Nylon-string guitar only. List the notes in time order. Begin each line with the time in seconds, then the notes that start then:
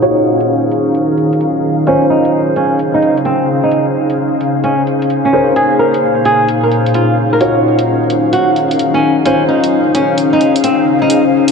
1.87 C#4
2.10 D#4
2.56 C#4
2.94 D#4
3.25 C4
3.63 D#4
4.64 C#4
5.25 C#4
5.56 G#4
5.79 A#4
6.26 G#4
6.63 A#4
6.95 F4
7.33 A#4
8.33 F#4
8.94 C#4
9.25 C#4
9.48 D#4
9.95 C#4
10.33 D#4
10.64 C4
11.02 D#4